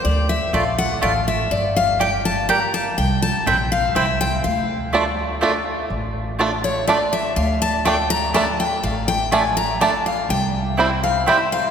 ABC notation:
X:1
M:3/4
L:1/8
Q:1/4=123
K:Dm
V:1 name="Steel-string acoustic guitar"
d e f ^f =f e | d f g a b a | g a g f e g | f6 |
z3 ^c d e | f a g b a g | f g ^g b a f | g3 f e f |]
V:2 name="Mandolin"
z2 [A,Fda] z [A,Fda] z | z2 [B,Gdg] z [B,Gdg] z | z2 [CEcg] z [CEcg] z | z2 [A,Fda] z [A,Fda] z |
z2 [A,Fda] z [A,Fda] z | z2 [A,Fda] z [A,Fda] z | z2 [A,Fda] z [A,Fda] z | z2 [CEcg] z [CEcg] z |]
V:3 name="Five-string banjo"
z6 | z6 | z6 | z2 [A,D] z [A,D] z |
z2 [A,D] z [A,D] z | z2 [A,D] z [A,D] z | z2 [A,D] z [A,D] z | z2 [G,CE] z [G,CE] z |]
V:4 name="Upright bass" clef=bass
D,,2 B,,,2 A,,,2 | G,,,6 | C,,2 B,,,2 C,,2 | D,,6 |
A,,,6 | D,,6 | A,,,6 | C,,6 |]